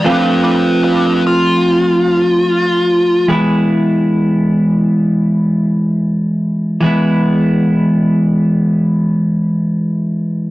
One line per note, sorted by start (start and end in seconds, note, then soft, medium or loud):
0.04 3.26 F3 medium
0.04 3.27 A3 medium
0.04 3.27 C4 medium
0.04 0.41 D4 medium
0.04 3.27 F4 loud
0.04 0.43 B4 medium
0.44 0.81 D4 medium
0.44 0.83 B4 medium
0.83 1.21 D4 medium
0.83 1.23 B4 medium
1.27 3.26 F4 loud
3.28 6.78 E3 medium
3.28 6.78 G#3 medium
3.28 6.79 B3 medium
3.28 6.79 E4 medium
6.81 10.51 E3 medium
6.81 10.51 G#3 medium
6.81 10.51 B3 medium
6.85 10.51 E4 medium